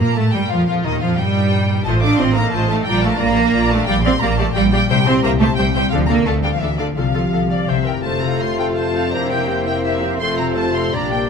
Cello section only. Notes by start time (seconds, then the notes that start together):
0.00 A#3
0.17 A3
0.34 G3
0.52 F3
0.69 F3
0.86 D#3
1.03 F3
1.19 G3
1.87 A3
2.03 D4
2.20 C4
2.37 A#3
2.53 A3
2.70 A3
2.88 G3
3.04 A3
3.20 A#3
3.71 A3
3.88 G3
4.05 C4
4.22 A#3
4.39 A3
4.56 G3
4.73 G3
4.90 G3
5.07 C4
5.23 A#3
5.41 A3
5.57 G3
5.75 G3
5.93 F3
6.09 A#3
6.27 A3
6.43 G3
6.54 F3
6.61 E3
6.80 D3
6.98 F3
8.04 F4
9.14 D4
9.49 C4
10.94 D4